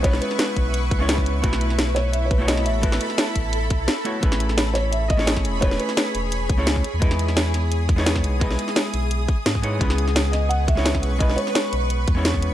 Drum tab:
HH |x-x-x-x-x-x-x-x-|x-x-x-x-x-x-x-x-|x-x-x-x-x-x-x-x-|x-x-x-x-x-x-x-x-|
SD |-o-oo-------o---|-o-oo-o-----oo--|-o-oo-------o---|-o-oo-o----ooo--|
BD |o-----o---o--o--|o---------o-----|o-----o---o-----|o---------o--o--|

HH |x-x-x-x-x-x-x-x-|x-x-x-x-x-x-x-x-|x-x-x-x-x-x-x-x-|x-x-x-x-x-x-x-x-|
SD |-o-oo-------o---|-o-oo-o----ooo--|-o-oo-------o---|-o-oo-o----ooo--|
BD |o---------o--o--|o---------o--o--|o---------o--o--|o---------o--o--|

HH |x-x-x-x-x-x-x-x-|
SD |-o-oo-------o---|
BD |o---------o--o--|